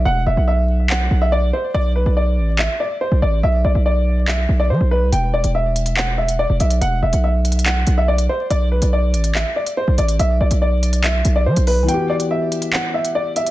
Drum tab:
HH |------------------------------------------------|------------------------------------------------|------------------------------------------------|x--------x--------x--x-----------x--------x--x--|
CP |------------------------x-----------------------|------------------------x-----------------------|------------------------x-----------------------|------------------------x-----------------------|

HH |x--------x--------x-x-x-x-----x--------x--------|x--------x--------x--x-----------x--------x--x--|x--------x--------x--x--x-----x--------x--o-----|x--------x--------x--x-----------x--------x--x--|
CP |------------------------x-----------------------|------------------------x-----------------------|------------------------x-----------------------|------------------------x-----------------------|